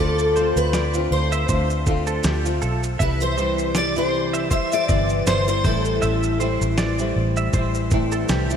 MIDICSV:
0, 0, Header, 1, 6, 480
1, 0, Start_track
1, 0, Key_signature, 0, "major"
1, 0, Tempo, 755668
1, 1906, Time_signature, 4, 2, 24, 8
1, 5441, End_track
2, 0, Start_track
2, 0, Title_t, "Clean electric guitar"
2, 0, Program_c, 0, 27
2, 0, Note_on_c, 0, 74, 89
2, 213, Note_off_c, 0, 74, 0
2, 227, Note_on_c, 0, 72, 72
2, 454, Note_off_c, 0, 72, 0
2, 468, Note_on_c, 0, 74, 63
2, 593, Note_off_c, 0, 74, 0
2, 839, Note_on_c, 0, 76, 65
2, 941, Note_off_c, 0, 76, 0
2, 948, Note_on_c, 0, 72, 73
2, 1072, Note_off_c, 0, 72, 0
2, 1315, Note_on_c, 0, 69, 73
2, 1425, Note_off_c, 0, 69, 0
2, 1425, Note_on_c, 0, 67, 77
2, 1551, Note_off_c, 0, 67, 0
2, 1663, Note_on_c, 0, 69, 72
2, 1789, Note_off_c, 0, 69, 0
2, 1901, Note_on_c, 0, 76, 94
2, 2131, Note_off_c, 0, 76, 0
2, 2144, Note_on_c, 0, 72, 72
2, 2372, Note_off_c, 0, 72, 0
2, 2381, Note_on_c, 0, 74, 65
2, 2509, Note_off_c, 0, 74, 0
2, 2753, Note_on_c, 0, 76, 74
2, 2858, Note_off_c, 0, 76, 0
2, 2863, Note_on_c, 0, 72, 77
2, 3103, Note_off_c, 0, 72, 0
2, 3103, Note_on_c, 0, 74, 74
2, 3229, Note_off_c, 0, 74, 0
2, 3347, Note_on_c, 0, 72, 68
2, 3472, Note_off_c, 0, 72, 0
2, 3585, Note_on_c, 0, 72, 73
2, 3711, Note_off_c, 0, 72, 0
2, 3824, Note_on_c, 0, 76, 104
2, 4053, Note_off_c, 0, 76, 0
2, 4065, Note_on_c, 0, 72, 70
2, 4294, Note_off_c, 0, 72, 0
2, 4306, Note_on_c, 0, 74, 73
2, 4432, Note_off_c, 0, 74, 0
2, 4682, Note_on_c, 0, 76, 76
2, 4783, Note_off_c, 0, 76, 0
2, 4790, Note_on_c, 0, 72, 73
2, 4914, Note_off_c, 0, 72, 0
2, 5158, Note_on_c, 0, 69, 74
2, 5261, Note_off_c, 0, 69, 0
2, 5268, Note_on_c, 0, 67, 86
2, 5394, Note_off_c, 0, 67, 0
2, 5441, End_track
3, 0, Start_track
3, 0, Title_t, "Steel-string acoustic guitar"
3, 0, Program_c, 1, 25
3, 0, Note_on_c, 1, 69, 88
3, 360, Note_off_c, 1, 69, 0
3, 363, Note_on_c, 1, 71, 87
3, 710, Note_off_c, 1, 71, 0
3, 712, Note_on_c, 1, 72, 83
3, 1643, Note_off_c, 1, 72, 0
3, 1915, Note_on_c, 1, 71, 84
3, 2042, Note_off_c, 1, 71, 0
3, 2045, Note_on_c, 1, 72, 88
3, 2390, Note_off_c, 1, 72, 0
3, 2392, Note_on_c, 1, 74, 89
3, 2524, Note_off_c, 1, 74, 0
3, 2527, Note_on_c, 1, 72, 73
3, 2866, Note_off_c, 1, 72, 0
3, 2869, Note_on_c, 1, 76, 89
3, 2990, Note_off_c, 1, 76, 0
3, 3006, Note_on_c, 1, 74, 91
3, 3345, Note_off_c, 1, 74, 0
3, 3348, Note_on_c, 1, 72, 85
3, 3473, Note_off_c, 1, 72, 0
3, 3481, Note_on_c, 1, 72, 76
3, 3591, Note_off_c, 1, 72, 0
3, 3591, Note_on_c, 1, 69, 73
3, 4309, Note_off_c, 1, 69, 0
3, 5441, End_track
4, 0, Start_track
4, 0, Title_t, "Nylon-string guitar"
4, 0, Program_c, 2, 24
4, 0, Note_on_c, 2, 50, 49
4, 0, Note_on_c, 2, 57, 60
4, 0, Note_on_c, 2, 60, 65
4, 0, Note_on_c, 2, 65, 62
4, 223, Note_off_c, 2, 50, 0
4, 228, Note_off_c, 2, 57, 0
4, 230, Note_on_c, 2, 50, 68
4, 231, Note_off_c, 2, 60, 0
4, 233, Note_off_c, 2, 65, 0
4, 236, Note_on_c, 2, 57, 67
4, 239, Note_on_c, 2, 60, 80
4, 246, Note_on_c, 2, 65, 74
4, 592, Note_off_c, 2, 65, 0
4, 598, Note_off_c, 2, 60, 0
4, 600, Note_off_c, 2, 50, 0
4, 600, Note_on_c, 2, 65, 62
4, 603, Note_off_c, 2, 57, 0
4, 606, Note_on_c, 2, 60, 57
4, 610, Note_on_c, 2, 57, 60
4, 612, Note_on_c, 2, 50, 55
4, 937, Note_off_c, 2, 50, 0
4, 945, Note_on_c, 2, 50, 53
4, 947, Note_off_c, 2, 57, 0
4, 947, Note_off_c, 2, 65, 0
4, 950, Note_off_c, 2, 60, 0
4, 954, Note_on_c, 2, 57, 54
4, 956, Note_on_c, 2, 60, 52
4, 964, Note_on_c, 2, 65, 54
4, 1172, Note_off_c, 2, 50, 0
4, 1179, Note_off_c, 2, 57, 0
4, 1180, Note_on_c, 2, 50, 62
4, 1184, Note_off_c, 2, 60, 0
4, 1187, Note_off_c, 2, 65, 0
4, 1187, Note_on_c, 2, 57, 65
4, 1191, Note_on_c, 2, 60, 63
4, 1195, Note_on_c, 2, 65, 78
4, 1547, Note_off_c, 2, 65, 0
4, 1554, Note_on_c, 2, 65, 56
4, 1555, Note_off_c, 2, 50, 0
4, 1556, Note_off_c, 2, 60, 0
4, 1558, Note_off_c, 2, 57, 0
4, 1563, Note_on_c, 2, 60, 51
4, 1572, Note_on_c, 2, 57, 43
4, 1904, Note_off_c, 2, 65, 0
4, 1904, Note_on_c, 2, 52, 50
4, 1908, Note_off_c, 2, 57, 0
4, 1908, Note_off_c, 2, 60, 0
4, 1910, Note_on_c, 2, 55, 53
4, 1916, Note_on_c, 2, 59, 50
4, 1923, Note_on_c, 2, 64, 57
4, 2135, Note_off_c, 2, 52, 0
4, 2138, Note_off_c, 2, 55, 0
4, 2141, Note_on_c, 2, 48, 68
4, 2143, Note_on_c, 2, 52, 76
4, 2146, Note_off_c, 2, 64, 0
4, 2146, Note_on_c, 2, 55, 84
4, 2151, Note_off_c, 2, 59, 0
4, 2154, Note_on_c, 2, 64, 71
4, 2511, Note_off_c, 2, 64, 0
4, 2515, Note_off_c, 2, 48, 0
4, 2516, Note_off_c, 2, 52, 0
4, 2518, Note_off_c, 2, 55, 0
4, 2518, Note_on_c, 2, 64, 64
4, 2525, Note_on_c, 2, 55, 60
4, 2526, Note_on_c, 2, 52, 54
4, 2532, Note_on_c, 2, 48, 49
4, 2856, Note_off_c, 2, 52, 0
4, 2863, Note_off_c, 2, 55, 0
4, 2864, Note_on_c, 2, 52, 55
4, 2866, Note_off_c, 2, 64, 0
4, 2870, Note_on_c, 2, 55, 55
4, 2873, Note_off_c, 2, 48, 0
4, 2881, Note_on_c, 2, 64, 53
4, 3098, Note_off_c, 2, 52, 0
4, 3100, Note_off_c, 2, 55, 0
4, 3104, Note_on_c, 2, 48, 61
4, 3106, Note_on_c, 2, 52, 62
4, 3107, Note_on_c, 2, 55, 68
4, 3108, Note_off_c, 2, 64, 0
4, 3113, Note_on_c, 2, 59, 70
4, 3115, Note_on_c, 2, 64, 66
4, 3467, Note_off_c, 2, 64, 0
4, 3475, Note_on_c, 2, 64, 47
4, 3477, Note_off_c, 2, 48, 0
4, 3477, Note_off_c, 2, 59, 0
4, 3478, Note_off_c, 2, 52, 0
4, 3479, Note_off_c, 2, 55, 0
4, 3485, Note_on_c, 2, 59, 53
4, 3494, Note_on_c, 2, 55, 39
4, 3584, Note_off_c, 2, 64, 0
4, 3587, Note_off_c, 2, 55, 0
4, 3588, Note_on_c, 2, 45, 67
4, 3590, Note_off_c, 2, 59, 0
4, 3592, Note_on_c, 2, 52, 80
4, 3594, Note_on_c, 2, 55, 73
4, 3600, Note_on_c, 2, 60, 70
4, 3601, Note_on_c, 2, 64, 81
4, 4054, Note_off_c, 2, 45, 0
4, 4062, Note_off_c, 2, 52, 0
4, 4062, Note_on_c, 2, 45, 63
4, 4064, Note_off_c, 2, 60, 0
4, 4065, Note_on_c, 2, 52, 69
4, 4067, Note_off_c, 2, 55, 0
4, 4069, Note_on_c, 2, 55, 83
4, 4072, Note_off_c, 2, 64, 0
4, 4072, Note_on_c, 2, 60, 75
4, 4074, Note_on_c, 2, 64, 81
4, 4432, Note_off_c, 2, 64, 0
4, 4436, Note_off_c, 2, 45, 0
4, 4438, Note_off_c, 2, 52, 0
4, 4438, Note_off_c, 2, 60, 0
4, 4440, Note_off_c, 2, 55, 0
4, 4440, Note_on_c, 2, 64, 76
4, 4446, Note_on_c, 2, 60, 62
4, 4449, Note_on_c, 2, 55, 64
4, 4450, Note_on_c, 2, 52, 55
4, 4453, Note_on_c, 2, 45, 63
4, 4779, Note_off_c, 2, 52, 0
4, 4787, Note_off_c, 2, 55, 0
4, 4787, Note_off_c, 2, 64, 0
4, 4787, Note_on_c, 2, 52, 66
4, 4791, Note_off_c, 2, 60, 0
4, 4794, Note_off_c, 2, 45, 0
4, 4794, Note_on_c, 2, 55, 66
4, 4801, Note_on_c, 2, 60, 61
4, 4806, Note_on_c, 2, 64, 62
4, 5024, Note_off_c, 2, 52, 0
4, 5026, Note_on_c, 2, 45, 79
4, 5027, Note_off_c, 2, 55, 0
4, 5031, Note_on_c, 2, 52, 73
4, 5032, Note_off_c, 2, 60, 0
4, 5033, Note_off_c, 2, 64, 0
4, 5035, Note_on_c, 2, 55, 75
4, 5039, Note_on_c, 2, 60, 73
4, 5041, Note_on_c, 2, 64, 82
4, 5392, Note_off_c, 2, 64, 0
4, 5399, Note_off_c, 2, 45, 0
4, 5400, Note_on_c, 2, 64, 60
4, 5402, Note_off_c, 2, 52, 0
4, 5403, Note_off_c, 2, 55, 0
4, 5404, Note_off_c, 2, 60, 0
4, 5412, Note_on_c, 2, 60, 50
4, 5418, Note_on_c, 2, 55, 45
4, 5441, Note_off_c, 2, 55, 0
4, 5441, Note_off_c, 2, 60, 0
4, 5441, Note_off_c, 2, 64, 0
4, 5441, End_track
5, 0, Start_track
5, 0, Title_t, "Fingered electric bass"
5, 0, Program_c, 3, 33
5, 0, Note_on_c, 3, 38, 89
5, 333, Note_off_c, 3, 38, 0
5, 356, Note_on_c, 3, 38, 87
5, 679, Note_off_c, 3, 38, 0
5, 704, Note_on_c, 3, 38, 80
5, 926, Note_off_c, 3, 38, 0
5, 948, Note_on_c, 3, 38, 85
5, 1401, Note_off_c, 3, 38, 0
5, 1426, Note_on_c, 3, 38, 79
5, 1646, Note_off_c, 3, 38, 0
5, 1668, Note_on_c, 3, 35, 68
5, 1887, Note_off_c, 3, 35, 0
5, 1908, Note_on_c, 3, 36, 96
5, 3081, Note_off_c, 3, 36, 0
5, 3107, Note_on_c, 3, 31, 88
5, 3327, Note_off_c, 3, 31, 0
5, 3344, Note_on_c, 3, 31, 74
5, 3566, Note_off_c, 3, 31, 0
5, 3587, Note_on_c, 3, 33, 86
5, 3807, Note_off_c, 3, 33, 0
5, 3830, Note_on_c, 3, 33, 104
5, 4175, Note_off_c, 3, 33, 0
5, 4201, Note_on_c, 3, 33, 96
5, 4522, Note_off_c, 3, 33, 0
5, 4549, Note_on_c, 3, 33, 86
5, 4769, Note_off_c, 3, 33, 0
5, 4786, Note_on_c, 3, 33, 79
5, 5242, Note_off_c, 3, 33, 0
5, 5268, Note_on_c, 3, 36, 72
5, 5441, Note_off_c, 3, 36, 0
5, 5441, End_track
6, 0, Start_track
6, 0, Title_t, "Drums"
6, 119, Note_on_c, 9, 82, 46
6, 182, Note_off_c, 9, 82, 0
6, 230, Note_on_c, 9, 82, 41
6, 293, Note_off_c, 9, 82, 0
6, 361, Note_on_c, 9, 82, 47
6, 424, Note_off_c, 9, 82, 0
6, 466, Note_on_c, 9, 38, 80
6, 467, Note_on_c, 9, 82, 60
6, 529, Note_off_c, 9, 38, 0
6, 530, Note_off_c, 9, 82, 0
6, 596, Note_on_c, 9, 82, 45
6, 660, Note_off_c, 9, 82, 0
6, 840, Note_on_c, 9, 82, 51
6, 903, Note_off_c, 9, 82, 0
6, 944, Note_on_c, 9, 82, 78
6, 946, Note_on_c, 9, 36, 89
6, 1008, Note_off_c, 9, 82, 0
6, 1010, Note_off_c, 9, 36, 0
6, 1080, Note_on_c, 9, 82, 41
6, 1144, Note_off_c, 9, 82, 0
6, 1184, Note_on_c, 9, 82, 50
6, 1187, Note_on_c, 9, 36, 93
6, 1247, Note_off_c, 9, 82, 0
6, 1250, Note_off_c, 9, 36, 0
6, 1314, Note_on_c, 9, 82, 47
6, 1378, Note_off_c, 9, 82, 0
6, 1420, Note_on_c, 9, 82, 80
6, 1425, Note_on_c, 9, 38, 82
6, 1484, Note_off_c, 9, 82, 0
6, 1489, Note_off_c, 9, 38, 0
6, 1560, Note_on_c, 9, 82, 58
6, 1624, Note_off_c, 9, 82, 0
6, 1663, Note_on_c, 9, 82, 45
6, 1727, Note_off_c, 9, 82, 0
6, 1800, Note_on_c, 9, 82, 46
6, 1864, Note_off_c, 9, 82, 0
6, 1906, Note_on_c, 9, 36, 89
6, 1906, Note_on_c, 9, 82, 52
6, 1969, Note_off_c, 9, 36, 0
6, 1969, Note_off_c, 9, 82, 0
6, 2036, Note_on_c, 9, 82, 43
6, 2100, Note_off_c, 9, 82, 0
6, 2146, Note_on_c, 9, 82, 38
6, 2210, Note_off_c, 9, 82, 0
6, 2277, Note_on_c, 9, 82, 41
6, 2341, Note_off_c, 9, 82, 0
6, 2380, Note_on_c, 9, 38, 86
6, 2381, Note_on_c, 9, 82, 62
6, 2444, Note_off_c, 9, 38, 0
6, 2444, Note_off_c, 9, 82, 0
6, 2515, Note_on_c, 9, 82, 42
6, 2578, Note_off_c, 9, 82, 0
6, 2757, Note_on_c, 9, 82, 55
6, 2821, Note_off_c, 9, 82, 0
6, 2864, Note_on_c, 9, 82, 67
6, 2865, Note_on_c, 9, 36, 83
6, 2928, Note_off_c, 9, 36, 0
6, 2928, Note_off_c, 9, 82, 0
6, 2998, Note_on_c, 9, 82, 40
6, 3061, Note_off_c, 9, 82, 0
6, 3104, Note_on_c, 9, 82, 56
6, 3107, Note_on_c, 9, 36, 86
6, 3168, Note_off_c, 9, 82, 0
6, 3170, Note_off_c, 9, 36, 0
6, 3235, Note_on_c, 9, 82, 44
6, 3298, Note_off_c, 9, 82, 0
6, 3346, Note_on_c, 9, 82, 74
6, 3350, Note_on_c, 9, 38, 86
6, 3409, Note_off_c, 9, 82, 0
6, 3414, Note_off_c, 9, 38, 0
6, 3482, Note_on_c, 9, 82, 55
6, 3545, Note_off_c, 9, 82, 0
6, 3585, Note_on_c, 9, 82, 44
6, 3586, Note_on_c, 9, 36, 99
6, 3649, Note_off_c, 9, 36, 0
6, 3649, Note_off_c, 9, 82, 0
6, 3716, Note_on_c, 9, 82, 43
6, 3780, Note_off_c, 9, 82, 0
6, 3825, Note_on_c, 9, 82, 58
6, 3888, Note_off_c, 9, 82, 0
6, 3958, Note_on_c, 9, 82, 39
6, 4021, Note_off_c, 9, 82, 0
6, 4068, Note_on_c, 9, 82, 47
6, 4132, Note_off_c, 9, 82, 0
6, 4202, Note_on_c, 9, 82, 50
6, 4266, Note_off_c, 9, 82, 0
6, 4304, Note_on_c, 9, 38, 88
6, 4305, Note_on_c, 9, 82, 59
6, 4368, Note_off_c, 9, 38, 0
6, 4369, Note_off_c, 9, 82, 0
6, 4439, Note_on_c, 9, 82, 41
6, 4502, Note_off_c, 9, 82, 0
6, 4678, Note_on_c, 9, 82, 48
6, 4742, Note_off_c, 9, 82, 0
6, 4784, Note_on_c, 9, 82, 73
6, 4786, Note_on_c, 9, 36, 88
6, 4847, Note_off_c, 9, 82, 0
6, 4850, Note_off_c, 9, 36, 0
6, 4920, Note_on_c, 9, 82, 40
6, 4983, Note_off_c, 9, 82, 0
6, 5023, Note_on_c, 9, 82, 55
6, 5028, Note_on_c, 9, 36, 92
6, 5086, Note_off_c, 9, 82, 0
6, 5092, Note_off_c, 9, 36, 0
6, 5157, Note_on_c, 9, 82, 48
6, 5220, Note_off_c, 9, 82, 0
6, 5263, Note_on_c, 9, 82, 76
6, 5268, Note_on_c, 9, 38, 91
6, 5326, Note_off_c, 9, 82, 0
6, 5331, Note_off_c, 9, 38, 0
6, 5401, Note_on_c, 9, 82, 55
6, 5441, Note_off_c, 9, 82, 0
6, 5441, End_track
0, 0, End_of_file